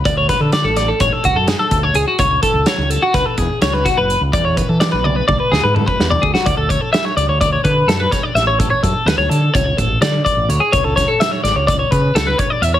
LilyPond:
<<
  \new Staff \with { instrumentName = "Clean electric guitar" } { \time 9/8 \key d \lydian \tempo 4. = 84 d''16 cis''16 b'16 a'16 d''16 a'16 d''16 a'16 cis''16 a'16 fis'16 a'16 gis'16 a'8 cis''16 gis'16 fis'16 | cis''8 a'8 cis''8 a'16 fis'16 b'16 a'16 gis'8 cis''16 b'16 fis'16 b'8 r16 | d''16 cis''16 b'16 a'16 d''16 b'16 d''16 b'16 d''16 b'16 gis'16 b'16 a'16 b'8 d''16 gis'16 fis'16 | d''16 a'16 cis''16 a'16 e''16 cis''16 d''16 cis''16 d''16 cis''16 b'8 a'16 b'16 cis''16 d''16 e''16 cis''16 |
a'16 cis''16 a'8 b'16 cis''16 a'8 cis''8 a'8 d''8 d''8 cis''16 gis'16 | cis''16 a'16 cis''16 a'16 e''16 cis''16 d''16 cis''16 d''16 cis''16 b'8 a'16 b'16 cis''16 d''16 e''16 cis''16 | }
  \new Staff \with { instrumentName = "Fingered electric bass" } { \clef bass \time 9/8 \key d \lydian d,8. d8 a,,8. a,,16 r16 cis,16 fis,8 r16 d,8 cis,16 r16 | cis,8 r16 cis,16 r16 cis,8 r16 cis,16 r16 e,16 r16 cis,8. fis,,8 cis,16 | e,8. e8 b,,8. b,,16 r16 d,16 gis,8 r16 e,8 d,16 r16 | d,16 d,8 r8. cis,16 d,8. d8 fis,8 r8 a,,8~ |
a,,8 fis,16 r16 d,16 d,16 d8 cis,8 a,,8 d8 r16 a,,16 d,16 r16 | cis,16 cis,8 r8. gis,,16 cis,8. cis8 cis,8 r8 e,8 | }
  \new DrumStaff \with { instrumentName = "Drums" } \drummode { \time 9/8 <hh bd>8 <hh bd sn>8 <hh sn>8 <hh sn>8 <hh bd sn>8 <hh bd>8 <hh sn>8 <hh bd>8 hh8 | <hh bd>8 <hh bd>8 <hh sn>8 hh8 <hh bd sn>8 <hh bd>8 <hh sn>8 <hh bd sn>8 hh8 | <hh bd>8 <hh bd>8 <hh sn>8 tommh8 <bd tommh>8 sn8 toml16 bd16 sn16 tomfh16 bd16 sn16 | <hh bd>8 <hh bd>8 <hh sn>8 hh8 <hh bd>8 <hh bd>8 <hh sn>8 <hh bd sn>8 <hh sn>8 |
<hh bd>8 <hh bd>8 <hh sn>8 hh8 <hh bd>8 <hh bd>8 <hh sn>8 <hh bd>8 hh8 | <hh bd>8 <hh bd sn>8 <hh sn>8 <hh sn>8 <hh bd>8 <hh bd>8 <hh sn>8 <hh bd>8 hh8 | }
>>